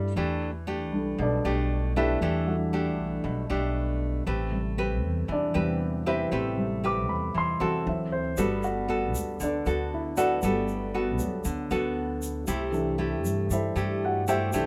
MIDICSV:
0, 0, Header, 1, 5, 480
1, 0, Start_track
1, 0, Key_signature, 1, "major"
1, 0, Tempo, 512821
1, 157, Time_signature, 4, 2, 24, 8
1, 13724, End_track
2, 0, Start_track
2, 0, Title_t, "Grand piano"
2, 0, Program_c, 0, 0
2, 0, Control_c, 0, 64, 127
2, 0, Note_on_c, 0, 57, 34
2, 0, Note_on_c, 0, 62, 35
2, 0, Note_on_c, 0, 64, 44
2, 170, Control_c, 0, 64, 0
2, 171, Note_off_c, 0, 57, 0
2, 173, Note_off_c, 0, 62, 0
2, 174, Note_off_c, 0, 64, 0
2, 344, Control_c, 0, 64, 127
2, 866, Note_on_c, 0, 55, 43
2, 872, Note_on_c, 0, 57, 35
2, 876, Note_on_c, 0, 62, 38
2, 1130, Note_off_c, 0, 62, 0
2, 1141, Note_on_c, 0, 74, 66
2, 1143, Note_on_c, 0, 69, 54
2, 1144, Note_on_c, 0, 62, 45
2, 1145, Note_on_c, 0, 71, 49
2, 1190, Note_off_c, 0, 55, 0
2, 1193, Note_off_c, 0, 57, 0
2, 1811, Note_off_c, 0, 74, 0
2, 1812, Note_off_c, 0, 69, 0
2, 1813, Note_off_c, 0, 62, 0
2, 1813, Note_off_c, 0, 71, 0
2, 1843, Note_on_c, 0, 64, 57
2, 1843, Note_on_c, 0, 69, 60
2, 1843, Note_on_c, 0, 76, 78
2, 1846, Note_on_c, 0, 71, 61
2, 2072, Note_off_c, 0, 64, 0
2, 2072, Note_off_c, 0, 76, 0
2, 2073, Note_off_c, 0, 69, 0
2, 2074, Note_off_c, 0, 71, 0
2, 2306, Note_on_c, 0, 55, 40
2, 2311, Note_on_c, 0, 57, 39
2, 2317, Note_on_c, 0, 66, 49
2, 2318, Note_on_c, 0, 62, 40
2, 2630, Note_off_c, 0, 55, 0
2, 2633, Note_off_c, 0, 57, 0
2, 2636, Note_off_c, 0, 62, 0
2, 2636, Note_off_c, 0, 66, 0
2, 4007, Control_c, 0, 64, 0
2, 4162, Control_c, 0, 64, 127
2, 4223, Note_on_c, 0, 48, 39
2, 4229, Note_on_c, 0, 55, 36
2, 4982, Note_on_c, 0, 74, 66
2, 4984, Note_on_c, 0, 62, 55
2, 5178, Note_off_c, 0, 48, 0
2, 5183, Note_off_c, 0, 55, 0
2, 5192, Note_on_c, 0, 48, 38
2, 5197, Note_on_c, 0, 55, 33
2, 5199, Note_on_c, 0, 59, 39
2, 5410, Note_off_c, 0, 48, 0
2, 5412, Note_off_c, 0, 55, 0
2, 5414, Note_off_c, 0, 59, 0
2, 5651, Note_off_c, 0, 74, 0
2, 5652, Note_off_c, 0, 62, 0
2, 5680, Note_on_c, 0, 76, 75
2, 5683, Note_on_c, 0, 72, 62
2, 5684, Note_on_c, 0, 64, 60
2, 5685, Note_on_c, 0, 71, 60
2, 5822, Note_off_c, 0, 76, 0
2, 5825, Note_off_c, 0, 72, 0
2, 5826, Note_off_c, 0, 64, 0
2, 5826, Note_off_c, 0, 71, 0
2, 6145, Note_on_c, 0, 48, 44
2, 6150, Note_on_c, 0, 55, 40
2, 6418, Note_on_c, 0, 86, 69
2, 6638, Note_on_c, 0, 83, 65
2, 6640, Note_off_c, 0, 86, 0
2, 6870, Note_off_c, 0, 83, 0
2, 6905, Note_on_c, 0, 84, 77
2, 7123, Note_on_c, 0, 81, 63
2, 7124, Note_off_c, 0, 84, 0
2, 7313, Note_off_c, 0, 48, 0
2, 7316, Note_off_c, 0, 55, 0
2, 7351, Note_on_c, 0, 52, 40
2, 7352, Note_off_c, 0, 81, 0
2, 7356, Note_on_c, 0, 54, 36
2, 7364, Note_on_c, 0, 60, 45
2, 7370, Control_c, 0, 64, 0
2, 7381, Note_on_c, 0, 76, 56
2, 7513, Control_c, 0, 64, 127
2, 7602, Note_off_c, 0, 76, 0
2, 7603, Note_on_c, 0, 72, 72
2, 7673, Note_off_c, 0, 52, 0
2, 7675, Note_off_c, 0, 54, 0
2, 7679, Note_off_c, 0, 60, 0
2, 7833, Note_off_c, 0, 72, 0
2, 7838, Note_on_c, 0, 57, 40
2, 7839, Note_on_c, 0, 59, 47
2, 7847, Control_c, 0, 64, 0
2, 7862, Note_on_c, 0, 71, 53
2, 8032, Control_c, 0, 64, 127
2, 8082, Note_off_c, 0, 71, 0
2, 8090, Note_on_c, 0, 66, 65
2, 8230, Note_off_c, 0, 66, 0
2, 8827, Note_on_c, 0, 74, 61
2, 8831, Note_on_c, 0, 69, 51
2, 8831, Note_on_c, 0, 71, 46
2, 8833, Note_on_c, 0, 62, 47
2, 9259, Note_off_c, 0, 74, 0
2, 9262, Note_off_c, 0, 62, 0
2, 9262, Note_off_c, 0, 69, 0
2, 9262, Note_off_c, 0, 71, 0
2, 9302, Note_on_c, 0, 76, 54
2, 9303, Note_on_c, 0, 64, 46
2, 9523, Note_off_c, 0, 64, 0
2, 9523, Note_off_c, 0, 76, 0
2, 9523, Note_on_c, 0, 78, 80
2, 9524, Note_on_c, 0, 66, 54
2, 9527, Note_on_c, 0, 71, 61
2, 9528, Note_on_c, 0, 74, 60
2, 9721, Note_off_c, 0, 57, 0
2, 9721, Note_off_c, 0, 59, 0
2, 9753, Note_on_c, 0, 57, 38
2, 9758, Note_on_c, 0, 59, 48
2, 10074, Note_off_c, 0, 57, 0
2, 10077, Note_off_c, 0, 59, 0
2, 10203, Note_off_c, 0, 66, 0
2, 10203, Note_off_c, 0, 78, 0
2, 10205, Note_off_c, 0, 71, 0
2, 10205, Note_off_c, 0, 74, 0
2, 10473, Note_on_c, 0, 54, 34
2, 10474, Note_on_c, 0, 57, 31
2, 10477, Note_on_c, 0, 59, 42
2, 10691, Note_off_c, 0, 54, 0
2, 10692, Note_off_c, 0, 57, 0
2, 10693, Note_off_c, 0, 59, 0
2, 11690, Control_c, 0, 64, 0
2, 11863, Control_c, 0, 64, 127
2, 11905, Note_on_c, 0, 52, 45
2, 11911, Note_on_c, 0, 57, 42
2, 11916, Note_on_c, 0, 62, 46
2, 12596, Note_off_c, 0, 52, 0
2, 12599, Note_off_c, 0, 57, 0
2, 12602, Note_off_c, 0, 62, 0
2, 12658, Note_on_c, 0, 76, 66
2, 12663, Note_on_c, 0, 64, 52
2, 12663, Note_on_c, 0, 72, 50
2, 12666, Note_on_c, 0, 69, 53
2, 13096, Note_off_c, 0, 76, 0
2, 13099, Note_off_c, 0, 64, 0
2, 13099, Note_off_c, 0, 72, 0
2, 13100, Note_off_c, 0, 69, 0
2, 13148, Note_on_c, 0, 78, 61
2, 13155, Note_on_c, 0, 66, 47
2, 13368, Note_off_c, 0, 78, 0
2, 13371, Note_off_c, 0, 66, 0
2, 13375, Note_on_c, 0, 79, 66
2, 13376, Note_on_c, 0, 72, 61
2, 13379, Note_on_c, 0, 76, 61
2, 13380, Note_on_c, 0, 67, 59
2, 13598, Note_on_c, 0, 52, 40
2, 13605, Note_on_c, 0, 57, 41
2, 13611, Note_on_c, 0, 62, 51
2, 13724, Note_off_c, 0, 52, 0
2, 13724, Note_off_c, 0, 57, 0
2, 13724, Note_off_c, 0, 62, 0
2, 13724, Note_off_c, 0, 67, 0
2, 13724, Note_off_c, 0, 72, 0
2, 13724, Note_off_c, 0, 76, 0
2, 13724, Note_off_c, 0, 79, 0
2, 13724, End_track
3, 0, Start_track
3, 0, Title_t, "Nylon-string guitar"
3, 0, Program_c, 1, 24
3, 0, Note_on_c, 1, 43, 53
3, 0, Note_on_c, 1, 55, 66
3, 0, Note_on_c, 1, 57, 65
3, 0, Note_on_c, 1, 64, 71
3, 118, Note_off_c, 1, 55, 0
3, 119, Note_off_c, 1, 57, 0
3, 121, Note_off_c, 1, 64, 0
3, 133, Note_off_c, 1, 43, 0
3, 153, Note_on_c, 1, 52, 55
3, 156, Note_on_c, 1, 57, 58
3, 159, Note_on_c, 1, 67, 61
3, 161, Note_on_c, 1, 62, 58
3, 465, Note_off_c, 1, 57, 0
3, 465, Note_off_c, 1, 62, 0
3, 467, Note_off_c, 1, 67, 0
3, 628, Note_on_c, 1, 57, 58
3, 631, Note_on_c, 1, 62, 54
3, 636, Note_on_c, 1, 67, 61
3, 1092, Note_off_c, 1, 52, 0
3, 1109, Note_off_c, 1, 57, 0
3, 1109, Note_on_c, 1, 47, 59
3, 1112, Note_off_c, 1, 62, 0
3, 1113, Note_off_c, 1, 67, 0
3, 1356, Note_on_c, 1, 57, 66
3, 1359, Note_on_c, 1, 62, 65
3, 1364, Note_on_c, 1, 67, 66
3, 1798, Note_off_c, 1, 57, 0
3, 1799, Note_off_c, 1, 62, 0
3, 1802, Note_off_c, 1, 67, 0
3, 1837, Note_on_c, 1, 57, 60
3, 1841, Note_on_c, 1, 62, 65
3, 1847, Note_on_c, 1, 67, 67
3, 2038, Note_off_c, 1, 57, 0
3, 2041, Note_off_c, 1, 62, 0
3, 2042, Note_off_c, 1, 67, 0
3, 2048, Note_off_c, 1, 47, 0
3, 2076, Note_on_c, 1, 52, 58
3, 2078, Note_on_c, 1, 57, 66
3, 2083, Note_on_c, 1, 67, 66
3, 2086, Note_on_c, 1, 62, 59
3, 2386, Note_off_c, 1, 57, 0
3, 2387, Note_off_c, 1, 62, 0
3, 2389, Note_off_c, 1, 67, 0
3, 2555, Note_on_c, 1, 57, 56
3, 2558, Note_on_c, 1, 62, 53
3, 2561, Note_on_c, 1, 67, 60
3, 3013, Note_off_c, 1, 52, 0
3, 3030, Note_on_c, 1, 47, 57
3, 3237, Note_off_c, 1, 57, 0
3, 3238, Note_off_c, 1, 62, 0
3, 3240, Note_off_c, 1, 67, 0
3, 3272, Note_on_c, 1, 57, 61
3, 3276, Note_on_c, 1, 62, 65
3, 3280, Note_on_c, 1, 67, 63
3, 3956, Note_off_c, 1, 57, 0
3, 3957, Note_off_c, 1, 62, 0
3, 3959, Note_off_c, 1, 67, 0
3, 3969, Note_off_c, 1, 47, 0
3, 3992, Note_on_c, 1, 57, 59
3, 3995, Note_on_c, 1, 60, 60
3, 3997, Note_on_c, 1, 71, 67
3, 3998, Note_on_c, 1, 67, 58
3, 4304, Note_off_c, 1, 60, 0
3, 4305, Note_off_c, 1, 67, 0
3, 4306, Note_off_c, 1, 71, 0
3, 4475, Note_on_c, 1, 67, 57
3, 4476, Note_on_c, 1, 60, 54
3, 4480, Note_on_c, 1, 71, 60
3, 4930, Note_off_c, 1, 57, 0
3, 4944, Note_on_c, 1, 52, 54
3, 5156, Note_off_c, 1, 67, 0
3, 5158, Note_off_c, 1, 60, 0
3, 5159, Note_off_c, 1, 71, 0
3, 5187, Note_on_c, 1, 60, 61
3, 5190, Note_on_c, 1, 67, 62
3, 5195, Note_on_c, 1, 71, 64
3, 5633, Note_off_c, 1, 60, 0
3, 5634, Note_off_c, 1, 67, 0
3, 5637, Note_off_c, 1, 71, 0
3, 5675, Note_on_c, 1, 60, 69
3, 5678, Note_on_c, 1, 67, 67
3, 5683, Note_on_c, 1, 71, 67
3, 5877, Note_off_c, 1, 60, 0
3, 5878, Note_off_c, 1, 67, 0
3, 5881, Note_off_c, 1, 71, 0
3, 5886, Note_off_c, 1, 52, 0
3, 5910, Note_on_c, 1, 57, 59
3, 5913, Note_on_c, 1, 60, 63
3, 5916, Note_on_c, 1, 67, 66
3, 5921, Note_on_c, 1, 71, 61
3, 6223, Note_off_c, 1, 60, 0
3, 6225, Note_off_c, 1, 67, 0
3, 6227, Note_off_c, 1, 71, 0
3, 6398, Note_on_c, 1, 60, 48
3, 6403, Note_on_c, 1, 67, 51
3, 6408, Note_on_c, 1, 71, 60
3, 6849, Note_off_c, 1, 57, 0
3, 6874, Note_on_c, 1, 52, 56
3, 7079, Note_off_c, 1, 60, 0
3, 7081, Note_off_c, 1, 67, 0
3, 7084, Note_off_c, 1, 71, 0
3, 7113, Note_on_c, 1, 60, 64
3, 7119, Note_on_c, 1, 66, 57
3, 7125, Note_on_c, 1, 69, 70
3, 7331, Note_off_c, 1, 52, 0
3, 7797, Note_off_c, 1, 60, 0
3, 7798, Note_off_c, 1, 66, 0
3, 7802, Note_off_c, 1, 69, 0
3, 7837, Note_on_c, 1, 55, 60
3, 7843, Note_on_c, 1, 59, 57
3, 7844, Note_on_c, 1, 66, 59
3, 7849, Note_on_c, 1, 69, 67
3, 8280, Note_off_c, 1, 59, 0
3, 8282, Note_off_c, 1, 66, 0
3, 8284, Note_off_c, 1, 69, 0
3, 8315, Note_on_c, 1, 59, 51
3, 8319, Note_on_c, 1, 66, 52
3, 8326, Note_on_c, 1, 69, 63
3, 8773, Note_off_c, 1, 55, 0
3, 8793, Note_off_c, 1, 59, 0
3, 8796, Note_off_c, 1, 66, 0
3, 8797, Note_off_c, 1, 69, 0
3, 8798, Note_on_c, 1, 50, 54
3, 9040, Note_on_c, 1, 59, 54
3, 9046, Note_on_c, 1, 66, 61
3, 9051, Note_on_c, 1, 69, 65
3, 9480, Note_off_c, 1, 59, 0
3, 9484, Note_off_c, 1, 66, 0
3, 9485, Note_off_c, 1, 69, 0
3, 9520, Note_on_c, 1, 59, 57
3, 9525, Note_on_c, 1, 66, 64
3, 9528, Note_on_c, 1, 69, 73
3, 9721, Note_off_c, 1, 59, 0
3, 9722, Note_off_c, 1, 66, 0
3, 9724, Note_off_c, 1, 69, 0
3, 9734, Note_off_c, 1, 50, 0
3, 9765, Note_on_c, 1, 59, 61
3, 9770, Note_on_c, 1, 55, 60
3, 9773, Note_on_c, 1, 66, 54
3, 9775, Note_on_c, 1, 69, 65
3, 10203, Note_off_c, 1, 59, 0
3, 10206, Note_off_c, 1, 66, 0
3, 10208, Note_off_c, 1, 69, 0
3, 10243, Note_on_c, 1, 59, 52
3, 10246, Note_on_c, 1, 66, 56
3, 10251, Note_on_c, 1, 69, 62
3, 10700, Note_off_c, 1, 55, 0
3, 10717, Note_on_c, 1, 50, 56
3, 10718, Note_off_c, 1, 59, 0
3, 10720, Note_off_c, 1, 66, 0
3, 10721, Note_off_c, 1, 69, 0
3, 10958, Note_on_c, 1, 59, 72
3, 10962, Note_on_c, 1, 66, 63
3, 10967, Note_on_c, 1, 69, 66
3, 11641, Note_off_c, 1, 59, 0
3, 11641, Note_off_c, 1, 66, 0
3, 11645, Note_off_c, 1, 69, 0
3, 11654, Note_off_c, 1, 50, 0
3, 11674, Note_on_c, 1, 48, 61
3, 11678, Note_on_c, 1, 57, 58
3, 11681, Note_on_c, 1, 64, 62
3, 11681, Note_on_c, 1, 67, 67
3, 12120, Note_off_c, 1, 57, 0
3, 12120, Note_off_c, 1, 64, 0
3, 12122, Note_off_c, 1, 67, 0
3, 12151, Note_on_c, 1, 57, 53
3, 12155, Note_on_c, 1, 64, 55
3, 12162, Note_on_c, 1, 67, 63
3, 12614, Note_off_c, 1, 48, 0
3, 12633, Note_off_c, 1, 57, 0
3, 12635, Note_off_c, 1, 64, 0
3, 12637, Note_off_c, 1, 67, 0
3, 12645, Note_on_c, 1, 55, 58
3, 12876, Note_on_c, 1, 57, 60
3, 12879, Note_on_c, 1, 64, 58
3, 12884, Note_on_c, 1, 67, 68
3, 13320, Note_off_c, 1, 57, 0
3, 13322, Note_off_c, 1, 64, 0
3, 13323, Note_off_c, 1, 67, 0
3, 13364, Note_on_c, 1, 57, 70
3, 13370, Note_on_c, 1, 64, 68
3, 13373, Note_on_c, 1, 67, 68
3, 13564, Note_off_c, 1, 57, 0
3, 13567, Note_off_c, 1, 64, 0
3, 13568, Note_off_c, 1, 67, 0
3, 13579, Note_off_c, 1, 55, 0
3, 13602, Note_on_c, 1, 48, 58
3, 13606, Note_on_c, 1, 57, 58
3, 13608, Note_on_c, 1, 64, 58
3, 13614, Note_on_c, 1, 67, 74
3, 13724, Note_off_c, 1, 48, 0
3, 13724, Note_off_c, 1, 57, 0
3, 13724, Note_off_c, 1, 64, 0
3, 13724, Note_off_c, 1, 67, 0
3, 13724, End_track
4, 0, Start_track
4, 0, Title_t, "Upright bass"
4, 0, Program_c, 2, 32
4, 0, Note_on_c, 2, 43, 85
4, 118, Note_off_c, 2, 43, 0
4, 150, Note_on_c, 2, 40, 82
4, 872, Note_off_c, 2, 40, 0
4, 872, Note_on_c, 2, 35, 87
4, 1097, Note_off_c, 2, 35, 0
4, 1110, Note_on_c, 2, 35, 89
4, 1337, Note_off_c, 2, 35, 0
4, 1352, Note_on_c, 2, 35, 89
4, 2037, Note_off_c, 2, 35, 0
4, 2071, Note_on_c, 2, 40, 87
4, 2792, Note_off_c, 2, 40, 0
4, 2792, Note_on_c, 2, 35, 91
4, 3017, Note_off_c, 2, 35, 0
4, 3036, Note_on_c, 2, 35, 80
4, 3259, Note_off_c, 2, 35, 0
4, 3279, Note_on_c, 2, 35, 81
4, 3960, Note_off_c, 2, 35, 0
4, 3992, Note_on_c, 2, 33, 79
4, 4713, Note_off_c, 2, 33, 0
4, 4713, Note_on_c, 2, 40, 77
4, 4937, Note_off_c, 2, 40, 0
4, 4949, Note_on_c, 2, 40, 89
4, 5176, Note_off_c, 2, 40, 0
4, 5196, Note_on_c, 2, 40, 84
4, 5879, Note_off_c, 2, 40, 0
4, 5914, Note_on_c, 2, 33, 83
4, 6638, Note_off_c, 2, 33, 0
4, 6638, Note_on_c, 2, 40, 84
4, 6860, Note_off_c, 2, 40, 0
4, 6883, Note_on_c, 2, 40, 82
4, 7103, Note_off_c, 2, 40, 0
4, 7121, Note_on_c, 2, 40, 87
4, 7342, Note_off_c, 2, 40, 0
4, 7363, Note_on_c, 2, 38, 102
4, 7806, Note_off_c, 2, 38, 0
4, 7841, Note_on_c, 2, 31, 89
4, 8559, Note_off_c, 2, 31, 0
4, 8559, Note_on_c, 2, 38, 76
4, 8781, Note_off_c, 2, 38, 0
4, 8805, Note_on_c, 2, 38, 76
4, 9025, Note_off_c, 2, 38, 0
4, 9044, Note_on_c, 2, 38, 81
4, 9723, Note_off_c, 2, 38, 0
4, 9759, Note_on_c, 2, 31, 93
4, 10472, Note_off_c, 2, 31, 0
4, 10472, Note_on_c, 2, 38, 81
4, 10698, Note_off_c, 2, 38, 0
4, 10717, Note_on_c, 2, 38, 89
4, 10941, Note_off_c, 2, 38, 0
4, 10959, Note_on_c, 2, 38, 85
4, 11642, Note_off_c, 2, 38, 0
4, 11678, Note_on_c, 2, 36, 84
4, 12397, Note_off_c, 2, 36, 0
4, 12397, Note_on_c, 2, 43, 97
4, 12622, Note_off_c, 2, 43, 0
4, 12639, Note_on_c, 2, 43, 80
4, 12863, Note_off_c, 2, 43, 0
4, 12879, Note_on_c, 2, 43, 92
4, 13563, Note_off_c, 2, 43, 0
4, 13607, Note_on_c, 2, 36, 96
4, 13724, Note_off_c, 2, 36, 0
4, 13724, End_track
5, 0, Start_track
5, 0, Title_t, "Drums"
5, 7836, Note_on_c, 9, 82, 64
5, 7929, Note_off_c, 9, 82, 0
5, 8078, Note_on_c, 9, 82, 23
5, 8171, Note_off_c, 9, 82, 0
5, 8562, Note_on_c, 9, 82, 66
5, 8656, Note_off_c, 9, 82, 0
5, 8800, Note_on_c, 9, 82, 61
5, 8893, Note_off_c, 9, 82, 0
5, 9040, Note_on_c, 9, 82, 24
5, 9134, Note_off_c, 9, 82, 0
5, 9519, Note_on_c, 9, 82, 58
5, 9613, Note_off_c, 9, 82, 0
5, 9755, Note_on_c, 9, 82, 66
5, 9849, Note_off_c, 9, 82, 0
5, 9996, Note_on_c, 9, 82, 26
5, 10090, Note_off_c, 9, 82, 0
5, 10472, Note_on_c, 9, 82, 64
5, 10566, Note_off_c, 9, 82, 0
5, 10712, Note_on_c, 9, 82, 63
5, 10805, Note_off_c, 9, 82, 0
5, 10957, Note_on_c, 9, 82, 25
5, 11051, Note_off_c, 9, 82, 0
5, 11440, Note_on_c, 9, 82, 60
5, 11533, Note_off_c, 9, 82, 0
5, 11674, Note_on_c, 9, 82, 69
5, 11767, Note_off_c, 9, 82, 0
5, 11918, Note_on_c, 9, 82, 23
5, 12011, Note_off_c, 9, 82, 0
5, 12401, Note_on_c, 9, 82, 66
5, 12495, Note_off_c, 9, 82, 0
5, 12640, Note_on_c, 9, 82, 63
5, 12734, Note_off_c, 9, 82, 0
5, 12880, Note_on_c, 9, 82, 27
5, 12974, Note_off_c, 9, 82, 0
5, 13361, Note_on_c, 9, 82, 62
5, 13455, Note_off_c, 9, 82, 0
5, 13596, Note_on_c, 9, 82, 65
5, 13690, Note_off_c, 9, 82, 0
5, 13724, End_track
0, 0, End_of_file